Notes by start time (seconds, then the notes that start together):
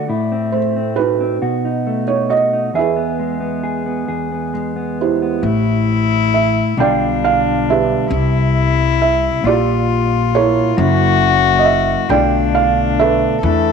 Already playing: A4 D5
0.09 A2 E4
0.32 C4
0.52 A3 C5
0.76 C4
0.96 D#4 F#4 B4
1.21 C4
1.42 B2 F#4
1.65 D#4
1.87 A3
2.08 D#4 C#5
2.30 F#4 D#5
2.53 D#4
2.74 E2 G#4 E5
2.79 G#4 B4
2.96 B3
3.19 G#3
3.40 B3
3.63 G#4
3.86 B3
4.08 E2 G#4
4.32 B3
4.54 G#3
4.76 B3
5.01 E4 G4 C5
5.22 B3
5.43 A1 A2 E4
6.34 E5
6.77 B1 B2 D3 G3 D4 F4 D5 G5
7.24 F5
7.70 G4 B4 E5
8.10 C2 C3 E4
9.02 E5
9.44 A#1 A#2 F4 G4 D5
10.35 E4 A#4 C#5
10.77 F#1 F#2 F#3 A#3 C#4 E4 F#4
11.59 D#5
11.65 E5
12.09 B1 B2 D3 A3 D4 F4 D5 G5
12.55 F5
12.99 A4 B4 E5
13.42 E2 E3 A3 D4 E4 A4